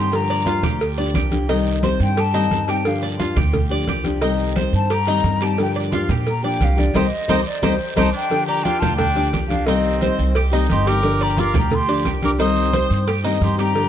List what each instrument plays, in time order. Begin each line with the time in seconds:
Already playing: upright bass G2, nylon-string guitar D#3 G3 C4 G4, cuban tres G4, flute C6
0.11 nylon-string guitar D3 F3 A#3 D4 G4, cowbell, high conga, long guiro, maracas
0.16 flute A#5
0.29 cuban tres D5, high conga, maracas
0.45 nylon-string guitar F3 A#3 D4 G4, cuban tres F4, cowbell, high conga, short guiro, maracas
0.63 upright bass D2, cuban tres G4, cowbell, high conga, low conga, short guiro, maracas
0.80 muted nylon-string guitar stroke, cowbell, high conga, long guiro, maracas
0.97 nylon-string guitar F3 A#3 D4 G4, cuban tres D5, high conga
1.14 upright bass C2, nylon-string guitar F3 A#3 D4 G4, cuban tres G4, cowbell, high conga, short guiro, maracas
1.31 nylon-string guitar F3 A#3 D4 G4, cowbell, high conga, short guiro, maracas
1.48 nylon-string guitar C3 D#3 G3 C4 G4, cuban tres D#4, cowbell, high conga, long guiro, maracas
1.65 high conga, maracas
1.82 nylon-string guitar D#3 G3 C4 G4, cuban tres C5, cowbell, high conga, short guiro, maracas
2.00 upright bass G2, flute G5, high conga, short guiro, maracas
2.16 cuban tres G4, flute A5, muted nylon-string guitar stroke, cowbell, high conga, long guiro, maracas
2.33 nylon-string guitar D#3 G3 C4 G4, cuban tres D#4, cowbell, high conga, maracas
2.51 upright bass G2, nylon-string guitar D#3 G3 C4 G4, cowbell, high conga, short guiro, maracas
2.68 nylon-string guitar D#3 G3 C4 G4, cuban tres G4, flute G5, cowbell, high conga, short guiro, maracas
2.85 nylon-string guitar D3 F3 A#3 D4 G4, flute F5, cowbell, high conga, long guiro, maracas
3.02 cuban tres D5, high conga, maracas
3.19 nylon-string guitar F3 A#3 D4 G4, cuban tres F4, cowbell, high conga, short guiro, maracas
3.36 upright bass D2, cuban tres G4, cowbell, high conga, low conga, short guiro, maracas
3.53 muted nylon-string guitar stroke, cowbell, high conga, low conga, long guiro, maracas
3.70 nylon-string guitar F3 A#3 D4 G4, cuban tres D5, high conga, maracas
3.87 upright bass C2, nylon-string guitar F3 A#3 D4 G4, cuban tres G4, cowbell, high conga, short guiro, maracas
4.04 nylon-string guitar F3 A#3 D4 G4, cowbell, high conga, short guiro, maracas
4.21 nylon-string guitar C3 D#3 G3 C4 G4, cuban tres D#4, cowbell, high conga, long guiro, maracas
4.39 high conga, maracas
4.56 nylon-string guitar D#3 G3 C4 G4, cuban tres C5, cowbell, high conga, short guiro, maracas
4.73 upright bass G2, flute A5, high conga, short guiro, maracas
4.90 cuban tres G4, flute A#5, muted nylon-string guitar stroke, cowbell, high conga, long guiro, maracas
5.07 nylon-string guitar D#3 G3 C4 G4, cuban tres D#4, cowbell, high conga
5.24 upright bass G2, nylon-string guitar D#3 G3 C4 G4, cowbell, high conga, short guiro, maracas
5.41 nylon-string guitar D#3 G3 C4 G4, cuban tres G4, flute A5, cowbell, high conga, short guiro, maracas
5.58 nylon-string guitar D3 F3 A#3 D4 G4, flute G5, cowbell, high conga, long guiro, maracas
5.76 cuban tres D5, high conga
5.92 nylon-string guitar F3 A#3 D4 G4, cuban tres F4, cowbell, high conga, short guiro, maracas
6.09 upright bass A#2, cuban tres G4, cowbell, high conga, low conga, short guiro, maracas
6.26 flute A#5, muted nylon-string guitar stroke, cowbell, high conga, long guiro, maracas
6.43 nylon-string guitar F3 A#3 D4 G4, cuban tres D5, flute G5, high conga, maracas
6.60 upright bass C2, nylon-string guitar F3 A#3 D4 G4, cuban tres G4, cowbell, high conga, short guiro, maracas
6.64 flute F5
6.77 nylon-string guitar F3 A#3 D4 G4, flute D5, cowbell, high conga, short guiro, maracas
6.93 upright bass C2, nylon-string guitar D#3 G3 C4, cuban tres D#4 G4 C5, cowbell, high conga, long guiro, maracas
6.98 flute D#5
7.28 upright bass C2, nylon-string guitar D#3 G3 C4, cuban tres D#4 G4 C5, cowbell, high conga, maracas
7.46 flute D5
7.62 upright bass C2, nylon-string guitar D#3 G3 C4, cuban tres D#4 G4 C5, flute C5, cowbell, high conga, long guiro, maracas
7.96 upright bass C2, nylon-string guitar D#3 G3 C4, trumpet D#4, cuban tres D#4 G4 C5, flute A5, cowbell, high conga, long guiro, maracas
8.13 trumpet D4, flute G5
8.30 nylon-string guitar D3 F3 A#3 D4 G4, cowbell, high conga, long guiro, maracas
8.47 trumpet G4, cuban tres D5, flute A#5, high conga
8.64 nylon-string guitar F3 A#3 D4 G4, trumpet D4, cuban tres F4, flute G5, cowbell, high conga, short guiro, maracas
8.79 upright bass D2, trumpet F4, cuban tres G4, flute A5, cowbell, high conga, low conga, short guiro, maracas
8.96 trumpet D4, flute G5, muted nylon-string guitar stroke, cowbell, high conga, low conga, long guiro, maracas
9.15 nylon-string guitar F3 A#3 D4 G4, cuban tres D5, high conga, maracas
9.32 upright bass C2, nylon-string guitar F3 A#3 D4 G4, cuban tres G4, cowbell, high conga, short guiro, maracas
9.49 nylon-string guitar F3 A#3 D4 G4, trumpet D4, flute F5, cowbell, high conga, short guiro, maracas
9.66 nylon-string guitar C3 D#3 G3 C4 G4, trumpet C4, cuban tres D#4, flute D#5, cowbell, high conga, long guiro, maracas
9.85 high conga
10.00 nylon-string guitar D#3 G3 C4 G4, cuban tres C5, cowbell, high conga, short guiro, maracas
10.18 upright bass C2, high conga, short guiro, maracas
10.35 cuban tres G4, muted nylon-string guitar stroke, cowbell, high conga, long guiro, maracas
10.52 nylon-string guitar D#3 G3 C4 G4, cuban tres D#4, cowbell, high conga, maracas
10.69 upright bass G1, nylon-string guitar D#3 G3 C4 G4, trumpet G4, flute C6, cowbell, high conga, short guiro, maracas
10.86 nylon-string guitar D#3 G3 C4 G4, cuban tres G4, trumpet A#4, flute D6, cowbell, high conga, short guiro, maracas
11.03 nylon-string guitar D3 F3 A#3 D4 G4, cowbell, high conga, long guiro, maracas
11.20 trumpet G4, cuban tres D5, flute A#5, high conga, maracas
11.37 nylon-string guitar F3 A#3 D4 G4, cuban tres F4, trumpet A#4, flute D6, cowbell, high conga, short guiro, maracas
11.54 upright bass D2, cuban tres G4, trumpet G4, flute A#5, cowbell, high conga, low conga, short guiro, maracas
11.71 trumpet G4, flute C6, muted nylon-string guitar stroke, cowbell, high conga, low conga, long guiro, maracas
11.88 nylon-string guitar F3 A#3 D4 G4, cuban tres D5, high conga, maracas
12.05 upright bass C2, nylon-string guitar F3 A#3 D4 G4, cuban tres G4, cowbell, high conga, short guiro, maracas
12.22 nylon-string guitar F3 A#3 D4 G4, trumpet A#4, flute D6, cowbell, high conga, short guiro, maracas
12.38 nylon-string guitar C3 D#3 G3 C4 G4, cuban tres D#4, trumpet C5, flute D#6, cowbell, high conga, long guiro, maracas
12.56 high conga, maracas
12.73 nylon-string guitar D#3 G3 C4 G4, cuban tres C5, cowbell, high conga, short guiro, maracas
12.90 upright bass G2, high conga, short guiro, maracas
13.06 cuban tres G4, muted nylon-string guitar stroke, cowbell, high conga, long guiro, maracas
13.24 nylon-string guitar D#3 G3 C4 G4, cuban tres D#4, cowbell, high conga, maracas
13.40 upright bass G2, nylon-string guitar D#3 G3 C4 G4, trumpet G4, flute C6, cowbell, high conga, short guiro, maracas
13.57 nylon-string guitar D#3 G3 C4 G4, trumpet G4, cuban tres G4, flute A#5, cowbell, high conga, short guiro, maracas
13.74 nylon-string guitar D3 F3 A#3 D4 G4, cowbell, high conga, long guiro, maracas